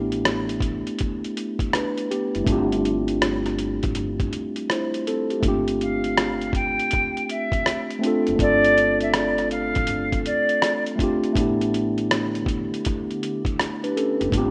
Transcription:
0.00 0.82 A1 medium
0.00 0.71 A3 medium
0.00 0.72 B3 medium
0.00 0.73 D4 medium
0.00 0.74 E4 medium
0.00 0.78 G4 medium
0.12 closed hi-hat soft
0.25 cross-stick loud
0.25 closed hi-hat medium
0.49 closed hi-hat soft
0.60 kick medium
0.60 closed hi-hat medium
0.87 closed hi-hat soft
0.99 kick medium
0.99 closed hi-hat medium
1.24 closed hi-hat soft
1.37 closed hi-hat medium
1.59 kick medium
1.59 closed hi-hat soft
1.73 2.09 D4 medium
1.73 2.09 B4 medium
1.73 cross-stick medium
1.73 closed hi-hat medium
1.98 closed hi-hat soft
2.11 2.34 B3 medium
2.11 2.33 G4 medium
2.11 closed hi-hat medium
2.35 2.47 F#1 medium
2.35 2.70 G3 medium
2.35 2.70 E4 medium
2.35 closed hi-hat soft
2.44 3.78 G1 loud
2.44 3.67 A3 medium
2.44 3.68 C4 medium
2.44 kick loud
2.44 closed hi-hat medium
2.48 3.69 D4 medium
2.48 3.70 F4 medium
2.48 3.71 G4 medium
2.72 closed hi-hat medium
2.85 closed hi-hat medium
3.08 closed hi-hat soft
3.22 cross-stick loud
3.22 closed hi-hat medium
3.46 cross-stick soft
3.46 closed hi-hat soft
3.59 closed hi-hat medium
3.83 3.95 A1 medium
3.83 kick medium
3.83 closed hi-hat soft
3.95 4.30 G1 loud
3.95 closed hi-hat medium
4.20 kick medium
4.20 closed hi-hat soft
4.33 closed hi-hat medium
4.56 closed hi-hat soft
4.70 5.05 E4 medium
4.70 5.05 C5 medium
4.70 cross-stick medium
4.70 closed hi-hat medium
4.94 closed hi-hat soft
5.07 5.30 C4 medium
5.07 5.30 A4 medium
5.07 closed hi-hat medium
5.30 5.47 G4 medium
5.30 closed hi-hat soft
5.40 6.74 G1 medium
5.40 6.63 A3 medium
5.40 5.51 A#3 medium
5.40 6.65 D4 medium
5.40 kick loud
5.40 closed hi-hat medium
5.46 6.67 C4 medium
5.46 6.66 F4 medium
5.46 6.67 G4 medium
5.68 closed hi-hat medium
5.81 6.51 F5 medium
5.81 closed hi-hat medium
6.04 closed hi-hat soft
6.17 cross-stick loud
6.17 closed hi-hat medium
6.41 closed hi-hat soft
6.53 7.25 G5 medium
6.53 kick medium
6.53 closed hi-hat medium
6.79 closed hi-hat soft
6.91 kick medium
6.91 closed hi-hat medium
7.17 closed hi-hat soft
7.29 7.87 E5 medium
7.29 closed hi-hat medium
7.52 kick medium
7.52 closed hi-hat soft
7.66 cross-stick medium
7.66 closed hi-hat medium
7.91 closed hi-hat soft
7.99 8.33 A3 medium
7.99 8.34 C4 medium
8.03 8.35 D4 medium
8.03 8.36 F4 medium
8.03 closed hi-hat medium
8.07 8.37 A4 medium
8.27 8.39 F#1 medium
8.27 closed hi-hat soft
8.36 9.71 G1 medium
8.36 9.59 A3 medium
8.36 9.60 C4 medium
8.36 kick loud
8.36 closed hi-hat medium
8.40 9.61 D4 medium
8.40 9.62 F4 medium
8.40 9.63 A4 medium
8.40 8.98 D5 loud
8.64 closed hi-hat medium
8.78 closed hi-hat medium
9.01 9.16 E5 medium
9.01 closed hi-hat soft
9.14 9.48 D5 medium
9.14 cross-stick loud
9.14 closed hi-hat medium
9.38 cross-stick soft
9.38 closed hi-hat soft
9.51 10.21 F5 medium
9.51 closed hi-hat medium
9.75 9.88 A1 medium
9.75 kick medium
9.75 closed hi-hat soft
9.87 10.22 G1 medium
9.87 closed hi-hat medium
10.12 kick medium
10.12 closed hi-hat soft
10.26 10.83 D5 medium
10.26 closed hi-hat medium
10.49 closed hi-hat soft
10.62 cross-stick loud
10.62 closed hi-hat medium
10.86 closed hi-hat soft
10.96 11.29 A3 medium
10.96 11.30 C4 medium
10.96 11.31 D4 medium
10.96 kick medium
11.00 11.32 F4 medium
11.00 11.33 G4 loud
11.00 closed hi-hat medium
11.24 closed hi-hat soft
11.33 12.67 A1 loud
11.33 14.30 D3 medium
11.33 12.56 A3 medium
11.33 12.56 B3 medium
11.33 14.30 B3 medium
11.33 12.57 D4 medium
11.33 14.51 G4 medium
11.33 kick loud
11.33 closed hi-hat medium
11.37 14.51 A3 medium
11.37 12.58 E4 medium
11.37 12.59 G4 medium
11.61 closed hi-hat medium
11.74 closed hi-hat medium
11.98 closed hi-hat soft
12.11 cross-stick loud
12.11 closed hi-hat medium
12.35 closed hi-hat soft
12.46 kick medium
12.46 closed hi-hat medium
12.74 closed hi-hat soft
12.85 kick medium
12.85 closed hi-hat medium
13.11 closed hi-hat soft
13.23 closed hi-hat medium
13.45 kick medium
13.45 closed hi-hat soft
13.60 cross-stick medium
13.60 closed hi-hat medium
13.84 13.96 D4 medium
13.84 13.95 B4 medium
13.84 closed hi-hat soft
13.97 14.19 C#4 medium
13.97 14.19 A4 medium
13.97 closed hi-hat medium
14.20 14.32 F#1 loud
14.20 14.30 B3 medium
14.20 14.36 G4 medium
14.20 closed hi-hat soft
14.29 14.51 G1 medium
14.29 14.51 A3 medium
14.29 14.40 B3 medium
14.29 kick loud
14.34 14.51 D4 medium
14.34 14.51 F4 medium
14.34 closed hi-hat medium
14.38 14.51 C4 medium
14.38 14.51 G4 medium

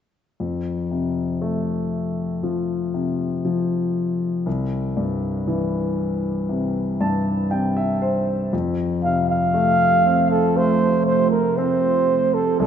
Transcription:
0.40 4.43 F2 soft
0.91 2.90 C3 soft
1.42 3.41 A3 soft
2.43 3.43 F3 soft
2.94 4.43 C3 soft
3.45 4.43 F3 soft
4.46 8.49 C2 soft
4.97 6.96 G2 soft
5.47 7.47 E3 soft
6.49 7.49 C3 soft
7.01 8.49 G2 soft
7.01 7.48 A5 medium
7.51 8.50 C3 soft
7.51 7.75 G5 soft
7.77 8.00 E5 medium
8.02 8.49 C5 soft
8.53 12.56 F2 medium
8.53 12.67 C3 medium
8.53 12.56 A3 medium
8.53 12.56 F4 medium
8.53 12.67 G4 medium
9.04 11.03 C3 soft
9.04 9.28 F5 medium
9.30 10.28 F5 medium
9.54 10.55 A3 soft
10.06 11.56 C4 soft
10.31 10.59 A4 medium
10.56 12.56 A3 soft
10.56 11.06 C5 medium
11.06 11.31 C5 medium
11.31 11.59 A#4 medium
11.57 12.57 C4 soft
11.57 12.36 C5 medium
12.34 12.59 A4 medium
12.59 12.67 C2 medium
12.59 12.67 G3 medium
12.59 12.67 E4 medium
12.59 12.67 A4 medium

